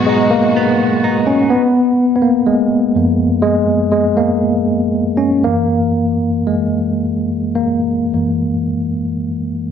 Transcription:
Already playing: G#2 B2 F#3 G#3 B3 F#4 G#4
0.06 G#3 D#4
0.30 A#3
0.57 B3
1.04 D#4
1.27 C#4
1.50 B3
2.15 B3
2.22 A#3
2.46 G#3
2.95 F#2 F3 A#3
3.42 G#3
3.92 G#3
4.17 A#3
5.17 C#4
5.44 F#2 E3 A#3
6.47 G#3
7.55 A#3
8.13 F#2 E3 A#3

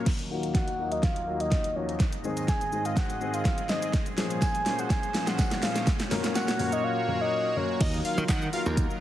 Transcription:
0.06 D#2 D#3 F#3 A#3 D#5, kick, snare, closed hi-hat, crash
0.19 closed hi-hat
0.30 A#3 D#4 F4 F#4
0.43 closed hi-hat
0.55 F#5, kick, snare, closed hi-hat
0.68 closed hi-hat
0.79 A#3 D#4 F4 F#4
0.92 D#5, closed hi-hat
1.03 F5, kick, snare, closed hi-hat
1.16 closed hi-hat
1.27 A#3 D#4 F4 F#4
1.40 D#5, closed hi-hat
1.52 kick, snare, closed hi-hat
1.64 closed hi-hat
1.76 F3 A#3 D#4 F#4 C#5
1.89 closed hi-hat
2.00 G#2 C4 G#4 D#5, kick, snare, closed hi-hat, shaker
2.13 closed hi-hat, shaker
2.24 D#3 G#3 C4 G#4, shaker
2.37 closed hi-hat, shaker
2.48 G#5, kick, snare, closed hi-hat, shaker
2.61 closed hi-hat, shaker
2.72 D#3 G#3 C4 G#4, shaker
2.85 F5, closed hi-hat, shaker
2.97 F#5, kick, snare, closed hi-hat, shaker
3.10 closed hi-hat, shaker
3.21 D#3 G#3 C4 G#4, shaker
3.34 F5, closed hi-hat, shaker
3.45 kick, snare, closed hi-hat, shaker
3.58 closed hi-hat, shaker
3.69 D#3 G#3 C4 G#4 D#5, snare, shaker
3.82 closed hi-hat, shaker
3.93 A#2 F3 C#4 C5, kick, snare, closed hi-hat, shaker
4.06 closed hi-hat, shaker
4.17 F3 A#3 C#4 G#4, snare, open hi-hat, tambourine, shaker
4.30 closed hi-hat, shaker
4.42 G#5, kick, snare, closed hi-hat, tambourine, shaker
4.55 closed hi-hat, shaker
4.66 F3 A#3 C#4 G#4, snare, open hi-hat, shaker
4.79 F#5, closed hi-hat, shaker
4.90 G#5, kick, snare, closed hi-hat, tambourine, shaker
5.03 closed hi-hat, shaker
5.14 F3 A#3 C#4 G#4, snare, open hi-hat, tambourine, shaker
5.27 F#5, snare, closed hi-hat, shaker
5.39 kick, snare, closed hi-hat, tambourine, shaker
5.51 snare, closed hi-hat, shaker
5.62 F3 A#3 C#4 G#4 F5, snare, open hi-hat, tambourine, shaker
5.76 snare, closed hi-hat, shaker
5.87 A#3 F#4 C#5, kick, snare, closed hi-hat, shaker
6.00 snare, closed hi-hat, shaker
6.11 A#2 F#3 A#3 C#4 A#4, snare, open hi-hat, tambourine, shaker
6.24 snare, closed hi-hat, shaker
6.35 F#5, snare, closed hi-hat, tambourine, shaker
6.48 snare, closed hi-hat, shaker
6.59 A#2 F#3 A#3 C#4 A#4, open hi-hat, tambourine, shaker
6.72 D#5, closed hi-hat, shaker
6.84 F5
7.08 A#2 F#3 A#3 C#4 A#4
7.21 D#5
7.56 A#2 F#3 A#3 C#4 A#4 C#5
7.80 D#2 D#3 F#3 A#3 D#4 F4 A#4 D#5, kick, closed hi-hat, crash, shaker
7.93 shaker
8.05 F5, open hi-hat, tambourine, shaker
8.18 D#3, shaker
8.29 D#3 F#5, kick, snare, clap, closed hi-hat, tambourine, shaker
8.42 shaker
8.53 F#3 A#3 D#4 F4 A#4 F5, open hi-hat, tambourine, shaker
8.66 D#2 F#3 A#3 D#4 F4 A#4, shaker
8.77 kick, closed hi-hat, tambourine, shaker
8.90 shaker

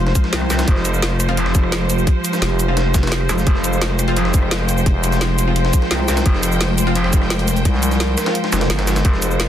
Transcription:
Already playing: F1 F3 G#3 F4 C5
0.07 snare
0.15 kick, closed hi-hat, cabasa
0.24 snare
0.33 C2, snare, closed hi-hat
0.41 cross-stick
0.50 snare, closed hi-hat, cabasa
0.59 snare, closed hi-hat, cabasa
0.68 F1 G4, kick, closed hi-hat
0.76 snare
0.85 closed hi-hat, cabasa
0.94 cabasa
1.02 snare, closed hi-hat
1.20 cross-stick, closed hi-hat, cabasa
1.29 F3 C4 F4, closed hi-hat
1.37 closed hi-hat
1.46 cross-stick, snare
1.55 kick, closed hi-hat, cabasa
1.64 cross-stick
1.72 snare, closed hi-hat
1.90 closed hi-hat, cabasa
1.98 cabasa
2.07 kick, closed hi-hat
2.25 closed hi-hat, cabasa
2.33 snare, cabasa
2.42 F1, snare, closed hi-hat
2.59 closed hi-hat, cabasa
2.68 F3 C4 F4
2.77 snare, closed hi-hat
2.94 kick, snare, closed hi-hat, cabasa
3.03 snare, closed hi-hat
3.07 snare, closed hi-hat
3.12 snare, closed hi-hat
3.21 cross-stick
3.29 F1, snare, closed hi-hat, cabasa
3.38 snare, cabasa
3.47 F1 C5, kick, closed hi-hat
3.55 snare
3.64 closed hi-hat, cabasa
3.73 cabasa
3.81 snare, closed hi-hat
3.99 G5, cross-stick, closed hi-hat, cabasa
4.08 F3 C4 F4, closed hi-hat
4.16 closed hi-hat
4.25 cross-stick, snare
4.34 kick, closed hi-hat, cabasa
4.43 cross-stick
4.51 snare, closed hi-hat
4.69 closed hi-hat, cabasa
4.78 cabasa
4.86 F1, kick, closed hi-hat
5.04 closed hi-hat, cabasa
5.12 snare, cabasa
5.21 snare, closed hi-hat
5.39 closed hi-hat, cabasa
5.47 F3 C4 F4
5.56 closed hi-hat
5.65 snare
5.73 kick, closed hi-hat, cabasa
5.82 snare
5.91 C2, snare, closed hi-hat
6.00 cross-stick
6.08 snare, closed hi-hat, cabasa
6.17 snare, closed hi-hat, cabasa
6.26 F1 A#4, kick, closed hi-hat
6.35 snare
6.43 closed hi-hat, cabasa
6.52 cabasa
6.61 snare, closed hi-hat
6.78 closed hi-hat, cabasa
6.87 F3 C4 F4, closed hi-hat
6.96 closed hi-hat
7.04 cross-stick, snare
7.13 kick, closed hi-hat, cabasa
7.22 cross-stick, snare
7.30 snare, closed hi-hat
7.39 closed hi-hat
7.48 snare, closed hi-hat, cabasa
7.57 closed hi-hat, cabasa
7.65 C2, kick, closed hi-hat
7.74 snare
7.83 closed hi-hat, cabasa
7.91 snare, cabasa
8.00 snare, closed hi-hat
8.18 cross-stick, snare, closed hi-hat, cabasa
8.26 F3 C4 F4, snare, closed hi-hat
8.35 closed hi-hat, swell
8.44 snare
8.52 F1, snare, closed hi-hat, cabasa
8.61 snare, closed hi-hat
8.70 G1, snare, closed hi-hat
8.79 cross-stick, snare, closed hi-hat
8.87 snare, closed hi-hat, cabasa
8.96 snare, closed hi-hat, cabasa
9.05 F1 E4 C5, kick, closed hi-hat
9.14 snare
9.22 closed hi-hat, cabasa
9.31 cabasa
9.40 snare, closed hi-hat

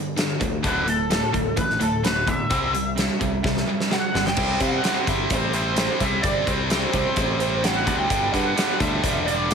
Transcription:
Already playing: G2 D3
0.16 G2 D3, snare, closed hi-hat
0.40 D2 G2 D3, kick, closed hi-hat
0.63 D1 D2 A2 D3, kick, closed hi-hat
0.68 B4
0.87 D2 A2 A4, closed hi-hat
1.10 D2 A2, snare, closed hi-hat
1.33 D1 D2 A2, kick, closed hi-hat
1.57 A1 D2 A2 B4, kick, closed hi-hat
1.70 snare
1.80 D1 D2 A2 A4, closed hi-hat
2.04 D2 A2 B4, snare, closed hi-hat
2.27 D2 A2 E5, kick, closed hi-hat
2.50 C2 C3 G3 C4, kick, closed hi-hat
2.74 C3 G3, closed hi-hat
2.98 C3 G3, snare, closed hi-hat
3.21 C2 C3 G3, kick, closed hi-hat
3.44 C2 C3 G3, kick, snare
3.57 snare
3.69 C3 G3
3.80 snare
3.91 C3 G3 F#5, snare
4.15 G1 C3 G3, snare
4.27 G5, snare
4.37 C2 C3 G3 C4, kick, crash
4.60 C3 G3 C4 F#5, kick, closed hi-hat
4.84 C3 G3 C4, snare, closed hi-hat
5.07 G1 C3 G3 C4 E5, kick, snare, closed hi-hat
5.30 A1 C3 G3 C4 C5, kick, closed hi-hat
5.53 C3 G3 C4 C5, closed hi-hat
5.77 C3 G3 C4, snare, closed hi-hat
6.00 C2 C3 G3 C4 E5, kick, closed hi-hat
6.23 G1 C3 G3 C4 D5, kick, closed hi-hat
6.47 C2 C3 G3 C4 C5, kick, closed hi-hat
6.70 C3 G3 C4 C5, snare, closed hi-hat
6.93 C2 C3 G3 C4 C5, kick, closed hi-hat
7.16 A1 C3 G3 C4, kick, closed hi-hat
7.40 C3 G3 C4, closed hi-hat
7.63 C3 G3 C4 F#5, snare, closed hi-hat
7.85 D2 C3 G3 C4, kick, closed hi-hat
7.98 G5
8.10 G1 G2 D3 G3, kick, closed hi-hat
8.32 G2 D3 G3 F#5, kick, closed hi-hat
8.56 G2 D3 G3, snare, closed hi-hat
8.79 D2 G2 D3 G3 E5, kick, closed hi-hat
9.02 E1 G2 D3 G3, kick, closed hi-hat
9.26 G2 D3 G3 D5, closed hi-hat
9.48 G2 D3 G3 D5, closed hi-hat

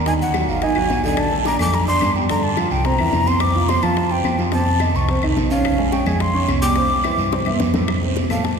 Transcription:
Already playing: D#2
0.06 D#3 D#4 D#5 G#5, high bongo, high conga, long guiro
0.20 F#5, high bongo, high conga
0.34 F#3 F#4 F#5, high bongo, high conga, short guiro, claves
0.48 G#1 F5, high conga, short guiro
0.62 D#3 D#4 D#5 G#5, high bongo, high conga, long guiro
0.76 G#1 F#3 F#4 F#5, high bongo, high conga, claves
0.90 A#1, high bongo, low bongo, high conga, short guiro
1.04 D3 D4 D5 G#5, high bongo, high conga, short guiro
1.17 A5, high bongo, high conga, long guiro, claves
1.31 A3 A4 A5, high bongo, high conga
1.45 D4 D5 A#5 D6, high bongo, high conga, short guiro
1.59 F2 A3 A4 A5 D6, high conga, low conga, short guiro, claves
1.74 A#5, high bongo, high conga, long guiro
1.87 D4 D5 C6 D6, high bongo, high conga
2.01 G2, high bongo, low bongo, high conga, short guiro, claves
2.15 G3 G4 G5, high bongo, high conga, short guiro
2.29 D3 D4 D5 A#5, high bongo, high conga, long guiro
2.43 A5, high bongo, high conga
2.57 F3 F4 F5, high bongo, high conga, short guiro, claves
2.71 C2 G5, high conga, short guiro
2.85 C3 C4 C5 A#5, high bongo, high conga, long guiro
2.99 E2 E3 E4 E5, high bongo, high conga, claves
3.12 F2, high bongo, low bongo, high conga, short guiro
3.26 C3 C4 C5 C6, high bongo, high conga, short guiro
3.40 D6, high bongo, high conga, long guiro, claves
3.55 F3 F4 F5, high bongo, high conga
3.68 C4 C5 C6, high bongo, high conga, short guiro
3.82 F2 F3 F4 F5 A5, high conga, low conga, short guiro, claves
3.96 high bongo, high conga, long guiro
4.10 C4 C5 G5 C6, high bongo, high conga
4.24 F2, high bongo, low bongo, high conga, short guiro, claves
4.38 F3 F4 F5, high bongo, high conga, short guiro
4.52 C3 C4 C5 A5, high bongo, high conga, long guiro
4.66 high bongo, high conga
4.80 D#3 D#4 D#5, high bongo, high conga, short guiro, claves
4.94 C2 C#6, high conga, short guiro
5.09 C3 C4 C5, high bongo, high conga, long guiro
5.22 C2 D#3 D#4 D#5, high bongo, high conga, claves
5.36 A#1, high bongo, low bongo, high conga, short guiro
5.50 C#3 C#4 C#5 F5, high bongo, short guiro
5.65 high bongo, high conga, long guiro, claves
5.78 G#3 G#4 G#5, high bongo, high conga
5.92 C#4 C#5 G5 C#6, high bongo, high conga, short guiro
6.06 F2 G#3 G#4 G#5, high conga, low conga, short guiro, claves
6.20 C6, high bongo, high conga, long guiro
6.34 C#4 C#5 C#6, high bongo
6.48 C2, high bongo, low bongo, high conga, short guiro, claves
6.61 G3 G4 G5 D6, high bongo, high conga, short guiro
6.76 C3 C4 C5, high bongo, high conga, long guiro
6.90 high bongo
7.04 E3 E4 E5, high bongo, high conga, short guiro, claves
7.18 G2, high conga, short guiro
7.32 C3 C4 C5, high bongo, high conga, long guiro
7.46 G2 E3 E4 E5, low bongo, high conga, claves
7.56 F2, low bongo, high conga
7.60 short guiro
7.65 low conga
7.74 A2 A3 A4, low bongo, low conga, short guiro
7.88 high bongo, high conga, long guiro, claves
8.02 C3 C4 C5, high bongo, high conga
8.16 high bongo, high conga, short guiro
8.30 A2 A3 A4 F5 A5, high conga, low conga, short guiro, claves
8.44 A5, high bongo, high conga, low conga, long guiro

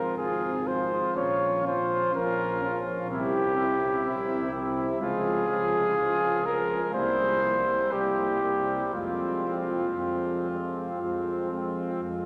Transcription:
Already playing: F3 C4 F4 A#4
0.17 G#1 F3 C4 F4 G#4
0.66 F3 C4 F4 C5
1.16 A#1 F3 C#4 F4 C#5
1.64 F3 C#4 F4 C5
2.13 A#1 F3 C#4 F4 A#4
2.61 F3 C#4 F4
3.10 C2 C3 C4 E4 G4
3.57 C3 C4 E4
4.04 C2 C3 C4 E4
4.52 C3 C4 E4
5.01 C#2 F3 G#3 F4 G#4
5.48 F3 G#3 F4
5.96 C#2 F3 G#3 F4
6.45 F3 G#3 F4 A#4
6.93 C2 G3 A#3 E4 C5
7.43 G3 A#3 E4
7.92 C2 G3 A#3 E4 G4
8.43 G3 A#3 E4
8.94 F2 F3 G#3 C4 F4
9.45 F3 G#3 C4
9.98 F2 F3 G#3 C4
10.49 F3 G#3 C4
11.00 F2 F3 G#3 C4
11.52 F3 G#3 C4
12.02 F2 F3 G#3 C4

